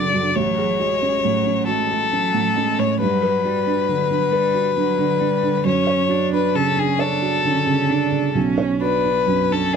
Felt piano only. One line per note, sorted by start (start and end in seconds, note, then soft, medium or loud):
0.00 0.31 B1 soft
0.00 0.13 F#2 soft
0.00 0.38 C#3 soft
0.00 0.38 C#4 soft
0.00 0.27 D4 soft
0.00 0.38 F#4 soft
0.00 0.39 B4 soft
0.13 0.36 F#2 soft
0.36 2.97 A1 soft
0.58 0.93 G#4 soft
0.80 1.15 F#4 soft
1.02 1.37 C#4 soft
1.24 1.59 A2 soft
1.46 1.81 C#4 soft
1.68 1.88 F#4 soft
1.90 2.25 F#4 soft
2.12 2.48 C#4 soft
2.34 2.70 A2 soft
2.57 2.92 C#4 soft
2.79 3.01 A2 soft
3.00 5.62 G2 medium
3.23 3.58 B4 soft
3.45 3.80 F#4 soft
3.67 4.02 D4 soft
3.89 4.24 D3 soft
4.10 4.46 D4 soft
4.33 4.68 B4 soft
4.54 4.90 F#4 soft
4.77 5.13 D4 soft
4.98 5.34 D3 soft
5.21 5.57 D4 soft
5.43 5.66 D3 soft
5.65 8.31 F#2 medium
5.87 6.23 C#5 medium
6.09 6.46 F#4 soft
6.33 6.69 D4 soft
6.55 6.91 C#3 medium
6.77 7.14 D4 soft
6.99 7.36 C#5 medium
7.22 7.58 F#4 soft
7.45 7.81 D3 soft
7.66 8.03 C#3 soft
7.89 8.26 D4 medium
8.12 8.35 C#3 soft
8.35 9.77 B1 medium
8.58 8.95 C#5 medium
8.81 9.18 F#4 soft
9.04 9.41 D4 soft
9.27 9.64 F#2 soft
9.50 9.77 D4 soft